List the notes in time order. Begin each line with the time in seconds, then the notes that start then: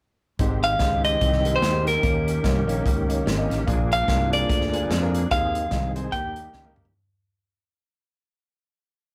0.39 G#1 G#2 D#3 G#3 C4 D#4 G4 C5, kick, closed hi-hat
0.63 F5, closed hi-hat
0.79 C#2 G#3 D#4 G4 C5, kick, snare, closed hi-hat
1.04 G#3 D#4 G4 C5 D#5, closed hi-hat
1.21 C2, kick, closed hi-hat
1.33 snare
1.45 G#3 D#4 G4 A#4, closed hi-hat
1.56 C5
1.61 D#2, snare, closed hi-hat
1.73 G#3 D#4 G4 A#4
1.87 A#4, snare, closed hi-hat
2.03 D#2 D#3 A#3 C#4 D#4 G4 C#5, kick, closed hi-hat
2.28 closed hi-hat
2.44 C2 A#3 D#4 G4 C#5, kick, snare, closed hi-hat
2.67 A#1 A#3 D#4 G4 C#5, closed hi-hat
2.86 C#2, kick, closed hi-hat
3.08 A#3 D#4 G4 C#5, closed hi-hat
3.26 G#1, snare, closed hi-hat
3.37 A#3 D#4 G4 D#5
3.50 A1, snare, closed hi-hat
3.66 A#1 A#2 F3 A#3 D4 F4 G#4 D5, kick, closed hi-hat
3.92 F5, closed hi-hat
4.08 C2 A#3 F4 G#4 A#4, kick, snare, closed hi-hat
4.31 A#3 F4 G#4 A#4 D5, closed hi-hat
4.49 D2, kick, closed hi-hat
4.61 snare
4.72 A#3 F4 G#4 D5, closed hi-hat
4.90 F2, snare, closed hi-hat
5.02 A#3 F4 G#4 A#4
5.15 closed hi-hat
5.30 D#2 D#3 G#3 C4 D#4 G#4 D#5 F5, kick, closed hi-hat
5.55 closed hi-hat
5.71 C2 C4 D#4 G#4 F5, kick, snare, closed hi-hat
5.95 C4 D#4 G#4 C5, closed hi-hat
6.12 D#2 D#3 G3 A#3 G4 G5, kick, closed hi-hat
6.36 A#3 D#4 G4 D#5, closed hi-hat
6.53 C#2, snare
6.65 A#3 D#4 G4 A#4, high tom
6.76 mid tom
6.85 floor tom